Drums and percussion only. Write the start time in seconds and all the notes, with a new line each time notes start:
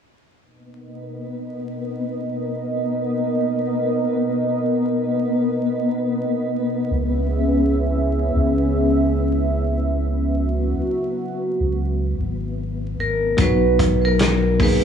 13.38 kick, closed hi-hat
13.79 kick, closed hi-hat
14.19 snare, closed hi-hat
14.60 kick, open hi-hat